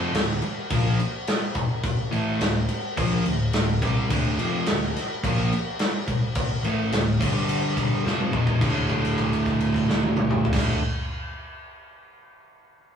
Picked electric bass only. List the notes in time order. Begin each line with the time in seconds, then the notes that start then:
Already playing: F1
0.13 D1
0.43 muted picked electric bass stroke
0.71 A#1
2.11 A1
2.39 D1
2.97 A#1
3.26 D1
3.54 D1
3.82 C2
4.10 D1
4.39 F1
4.67 D1
4.95 muted picked electric bass stroke
5.23 A#1
6.63 A1
6.92 D1
7.20 G1
8.04 F1
8.33 E1
8.62 D1
10.53 D1